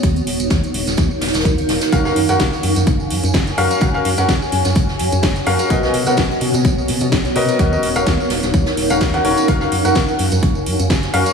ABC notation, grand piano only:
X:1
M:4/4
L:1/16
Q:"Swing 16ths" 1/4=127
K:F#
V:1 name="Grand piano"
z16 | [CFAe] [CFAe] z [CFAf] z8 z2 [CFAe]2 | [CFAe] [CFAe] z [CFAf] z8 z2 [CFAe]2 | [B,FAd] [B,FAd] z [B,FAf] z8 z2 [B,FAd]2 |
[CFAd] [CFAd] z [CFAe] z6 z [CFAe]2 [CFAf] [CFAc]2 | [CFAe] [CFAe] z [CFAf] z8 z2 [CFAe]2 |]